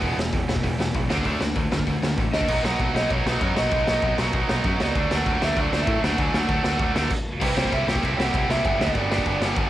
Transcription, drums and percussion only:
0.02 kick, open hi-hat
0.19 snare
0.33 kick, open hi-hat
0.49 snare
0.56 kick
0.64 kick, open hi-hat
0.80 snare
0.94 kick, open hi-hat
1.10 snare
1.18 kick
1.24 kick, open hi-hat
1.41 snare
1.55 kick, open hi-hat
1.72 snare
1.79 kick
1.87 kick, open hi-hat
2.03 snare
2.17 kick, open hi-hat
2.33 snare
2.41 kick
2.48 kick, crash
2.65 snare
2.80 kick, crash
2.96 snare
3.10 kick, crash
3.27 snare
3.41 kick, crash
3.56 snare
3.71 kick, crash
3.87 snare
4.02 kick, crash
4.18 snare
4.33 kick, crash
4.49 snare
4.64 kick, crash
4.80 snare
4.95 kick, crash
5.11 snare
5.26 kick, crash
5.42 snare
5.57 kick, crash
5.73 snare
5.87 kick, crash
6.04 snare
6.18 kick, crash
6.34 snare
6.49 kick, crash
6.64 snare
6.79 kick, crash
6.96 snare
7.11 kick, crash
7.41 kick, crash
7.58 snare
7.64 kick
7.72 kick, ride
7.89 snare
7.96 kick
8.03 kick, ride
8.20 snare
8.34 kick, ride
8.50 snare
8.65 kick, ride
8.81 snare
8.88 kick
8.95 kick, ride
9.11 snare
9.18 kick
9.25 kick, ride
9.42 snare
9.56 kick, ride

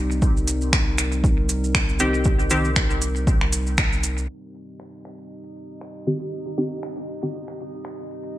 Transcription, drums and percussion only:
0.11 maracas
0.22 kick, maracas
0.37 maracas
0.48 closed hi-hat, maracas
0.61 maracas
0.73 finger snap, kick, maracas
0.98 finger snap, closed hi-hat, maracas
1.12 maracas
1.24 kick, maracas
1.49 closed hi-hat, maracas
1.64 maracas
1.75 finger snap, kick, maracas
1.89 maracas
1.99 closed hi-hat, maracas
2.14 maracas
2.24 kick, maracas
2.39 maracas
2.50 closed hi-hat, maracas
2.65 maracas
2.76 finger snap, kick, maracas
2.90 maracas
3.02 closed hi-hat, maracas
3.16 maracas
3.27 kick, maracas
3.41 finger snap
3.53 closed hi-hat, maracas
3.67 maracas
3.78 finger snap, kick, maracas
3.93 maracas
4.03 closed hi-hat, maracas
4.18 maracas
4.29 maracas
4.43 maracas
4.54 maracas
4.69 maracas
4.80 finger snap
5.04 finger snap, maracas
5.30 maracas
5.56 maracas
5.70 maracas
5.81 finger snap
5.96 maracas
6.07 maracas
6.22 maracas
6.33 maracas
6.47 maracas
6.58 maracas
6.72 maracas
6.83 finger snap
7.07 maracas
7.23 maracas
7.34 maracas
7.48 finger snap
7.60 maracas
7.73 maracas
7.85 finger snap
7.99 maracas
8.11 maracas
8.25 maracas
8.35 maracas

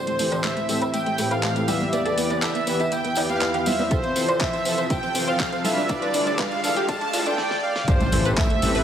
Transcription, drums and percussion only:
0.07 closed hi-hat, tambourine
0.19 open hi-hat, tambourine
0.32 closed hi-hat, tambourine, cowbell
0.44 clap, closed hi-hat, tambourine
0.57 closed hi-hat, tambourine
0.69 open hi-hat, tambourine
0.82 closed hi-hat, tambourine
0.94 closed hi-hat, tambourine
1.06 closed hi-hat, tambourine
1.18 open hi-hat, tambourine
1.31 closed hi-hat, tambourine
1.43 clap, closed hi-hat, tambourine
1.56 closed hi-hat, tambourine
1.68 open hi-hat, tambourine, high conga
1.80 tambourine, high conga
1.92 closed hi-hat, tambourine
2.06 closed hi-hat, tambourine
2.18 open hi-hat, tambourine
2.30 closed hi-hat, tambourine, cowbell
2.42 clap, closed hi-hat, tambourine
2.55 closed hi-hat, tambourine
2.67 open hi-hat, tambourine
2.80 closed hi-hat, tambourine
2.92 closed hi-hat, tambourine
3.04 closed hi-hat, tambourine
3.15 open hi-hat, tambourine, cowbell
3.29 closed hi-hat, tambourine
3.41 clap, closed hi-hat, tambourine
3.54 closed hi-hat, tambourine
3.66 open hi-hat, tambourine, high conga
3.78 tambourine, cowbell, high conga
3.91 kick, closed hi-hat, tambourine
4.03 closed hi-hat, tambourine
4.16 open hi-hat, tambourine
4.28 closed hi-hat, tambourine, cowbell
4.40 kick, clap, closed hi-hat, tambourine
4.53 closed hi-hat, tambourine
4.65 open hi-hat, tambourine
4.78 closed hi-hat, tambourine
4.90 kick, closed hi-hat, tambourine
5.03 closed hi-hat, tambourine
5.15 open hi-hat, tambourine
5.28 closed hi-hat, tambourine
5.40 kick, clap, closed hi-hat, tambourine
5.53 closed hi-hat, tambourine
5.64 open hi-hat, tambourine, high conga
5.77 tambourine, high conga
5.89 kick, closed hi-hat, tambourine
6.02 closed hi-hat, tambourine
6.14 open hi-hat, tambourine
6.27 closed hi-hat, tambourine, cowbell
6.38 kick, clap, closed hi-hat, tambourine
6.51 closed hi-hat, tambourine
6.64 open hi-hat, tambourine
6.76 closed hi-hat, tambourine
6.89 kick, closed hi-hat, tambourine
7.01 closed hi-hat, tambourine
7.13 open hi-hat, tambourine, cowbell
7.26 closed hi-hat, tambourine
7.38 snare
7.51 snare
7.76 snare
7.88 kick, closed hi-hat, tambourine, cowbell
8.01 closed hi-hat, tambourine, high conga
8.12 open hi-hat, tambourine
8.25 closed hi-hat, tambourine
8.37 kick, clap, closed hi-hat, tambourine
8.50 closed hi-hat, tambourine
8.62 open hi-hat, tambourine, high conga
8.75 open hi-hat, tambourine

